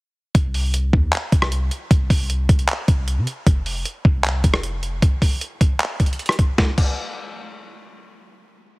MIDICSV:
0, 0, Header, 1, 3, 480
1, 0, Start_track
1, 0, Tempo, 389610
1, 430, Time_signature, 4, 2, 24, 8
1, 10829, End_track
2, 0, Start_track
2, 0, Title_t, "808-style bass"
2, 0, Program_c, 0, 38
2, 429, Note_on_c, 0, 36, 106
2, 1121, Note_off_c, 0, 36, 0
2, 1149, Note_on_c, 0, 39, 109
2, 1380, Note_off_c, 0, 39, 0
2, 1630, Note_on_c, 0, 36, 106
2, 2091, Note_off_c, 0, 36, 0
2, 2350, Note_on_c, 0, 36, 109
2, 2580, Note_off_c, 0, 36, 0
2, 2589, Note_on_c, 0, 36, 108
2, 3050, Note_off_c, 0, 36, 0
2, 3069, Note_on_c, 0, 36, 104
2, 3300, Note_off_c, 0, 36, 0
2, 3550, Note_on_c, 0, 36, 109
2, 3910, Note_on_c, 0, 48, 105
2, 3929, Note_off_c, 0, 36, 0
2, 4024, Note_off_c, 0, 48, 0
2, 4269, Note_on_c, 0, 29, 109
2, 4730, Note_off_c, 0, 29, 0
2, 4989, Note_on_c, 0, 36, 101
2, 5450, Note_off_c, 0, 36, 0
2, 5469, Note_on_c, 0, 29, 108
2, 6161, Note_off_c, 0, 29, 0
2, 10829, End_track
3, 0, Start_track
3, 0, Title_t, "Drums"
3, 429, Note_on_c, 9, 36, 127
3, 429, Note_on_c, 9, 42, 84
3, 552, Note_off_c, 9, 36, 0
3, 552, Note_off_c, 9, 42, 0
3, 669, Note_on_c, 9, 46, 81
3, 793, Note_off_c, 9, 46, 0
3, 909, Note_on_c, 9, 42, 96
3, 1033, Note_off_c, 9, 42, 0
3, 1149, Note_on_c, 9, 36, 111
3, 1272, Note_off_c, 9, 36, 0
3, 1390, Note_on_c, 9, 39, 114
3, 1390, Note_on_c, 9, 42, 78
3, 1513, Note_off_c, 9, 39, 0
3, 1513, Note_off_c, 9, 42, 0
3, 1630, Note_on_c, 9, 36, 95
3, 1631, Note_on_c, 9, 42, 76
3, 1750, Note_on_c, 9, 37, 98
3, 1754, Note_off_c, 9, 36, 0
3, 1754, Note_off_c, 9, 42, 0
3, 1871, Note_on_c, 9, 42, 85
3, 1873, Note_off_c, 9, 37, 0
3, 1994, Note_off_c, 9, 42, 0
3, 2110, Note_on_c, 9, 42, 64
3, 2233, Note_off_c, 9, 42, 0
3, 2350, Note_on_c, 9, 36, 126
3, 2350, Note_on_c, 9, 42, 85
3, 2473, Note_off_c, 9, 36, 0
3, 2474, Note_off_c, 9, 42, 0
3, 2589, Note_on_c, 9, 36, 99
3, 2590, Note_on_c, 9, 46, 77
3, 2712, Note_off_c, 9, 36, 0
3, 2713, Note_off_c, 9, 46, 0
3, 2830, Note_on_c, 9, 42, 94
3, 2953, Note_off_c, 9, 42, 0
3, 3069, Note_on_c, 9, 36, 111
3, 3070, Note_on_c, 9, 42, 76
3, 3190, Note_off_c, 9, 42, 0
3, 3190, Note_on_c, 9, 42, 49
3, 3193, Note_off_c, 9, 36, 0
3, 3309, Note_on_c, 9, 39, 116
3, 3310, Note_off_c, 9, 42, 0
3, 3310, Note_on_c, 9, 42, 80
3, 3433, Note_off_c, 9, 39, 0
3, 3433, Note_off_c, 9, 42, 0
3, 3550, Note_on_c, 9, 36, 96
3, 3550, Note_on_c, 9, 42, 70
3, 3673, Note_off_c, 9, 36, 0
3, 3673, Note_off_c, 9, 42, 0
3, 3790, Note_on_c, 9, 42, 84
3, 3913, Note_off_c, 9, 42, 0
3, 4029, Note_on_c, 9, 42, 68
3, 4152, Note_off_c, 9, 42, 0
3, 4269, Note_on_c, 9, 36, 127
3, 4269, Note_on_c, 9, 42, 84
3, 4392, Note_off_c, 9, 36, 0
3, 4392, Note_off_c, 9, 42, 0
3, 4509, Note_on_c, 9, 46, 81
3, 4632, Note_off_c, 9, 46, 0
3, 4748, Note_on_c, 9, 42, 94
3, 4871, Note_off_c, 9, 42, 0
3, 4989, Note_on_c, 9, 36, 108
3, 5112, Note_off_c, 9, 36, 0
3, 5228, Note_on_c, 9, 39, 117
3, 5228, Note_on_c, 9, 42, 78
3, 5351, Note_off_c, 9, 39, 0
3, 5352, Note_off_c, 9, 42, 0
3, 5469, Note_on_c, 9, 42, 76
3, 5470, Note_on_c, 9, 36, 97
3, 5588, Note_on_c, 9, 37, 102
3, 5592, Note_off_c, 9, 42, 0
3, 5593, Note_off_c, 9, 36, 0
3, 5709, Note_on_c, 9, 42, 85
3, 5711, Note_off_c, 9, 37, 0
3, 5832, Note_off_c, 9, 42, 0
3, 5949, Note_on_c, 9, 42, 63
3, 6072, Note_off_c, 9, 42, 0
3, 6189, Note_on_c, 9, 36, 122
3, 6189, Note_on_c, 9, 42, 85
3, 6312, Note_off_c, 9, 36, 0
3, 6312, Note_off_c, 9, 42, 0
3, 6428, Note_on_c, 9, 36, 99
3, 6429, Note_on_c, 9, 46, 78
3, 6552, Note_off_c, 9, 36, 0
3, 6553, Note_off_c, 9, 46, 0
3, 6669, Note_on_c, 9, 42, 94
3, 6793, Note_off_c, 9, 42, 0
3, 6909, Note_on_c, 9, 36, 114
3, 6911, Note_on_c, 9, 42, 77
3, 7033, Note_off_c, 9, 36, 0
3, 7034, Note_off_c, 9, 42, 0
3, 7149, Note_on_c, 9, 39, 117
3, 7150, Note_on_c, 9, 42, 77
3, 7273, Note_off_c, 9, 39, 0
3, 7273, Note_off_c, 9, 42, 0
3, 7389, Note_on_c, 9, 42, 58
3, 7390, Note_on_c, 9, 36, 97
3, 7469, Note_off_c, 9, 42, 0
3, 7469, Note_on_c, 9, 42, 58
3, 7513, Note_off_c, 9, 36, 0
3, 7550, Note_off_c, 9, 42, 0
3, 7550, Note_on_c, 9, 42, 59
3, 7630, Note_off_c, 9, 42, 0
3, 7630, Note_on_c, 9, 42, 56
3, 7710, Note_off_c, 9, 42, 0
3, 7710, Note_on_c, 9, 42, 56
3, 7749, Note_on_c, 9, 37, 94
3, 7790, Note_off_c, 9, 42, 0
3, 7790, Note_on_c, 9, 42, 60
3, 7870, Note_off_c, 9, 42, 0
3, 7870, Note_on_c, 9, 36, 98
3, 7870, Note_on_c, 9, 42, 67
3, 7872, Note_off_c, 9, 37, 0
3, 7993, Note_off_c, 9, 36, 0
3, 7993, Note_off_c, 9, 42, 0
3, 8110, Note_on_c, 9, 36, 112
3, 8110, Note_on_c, 9, 38, 90
3, 8233, Note_off_c, 9, 36, 0
3, 8233, Note_off_c, 9, 38, 0
3, 8350, Note_on_c, 9, 36, 105
3, 8350, Note_on_c, 9, 49, 90
3, 8473, Note_off_c, 9, 36, 0
3, 8473, Note_off_c, 9, 49, 0
3, 10829, End_track
0, 0, End_of_file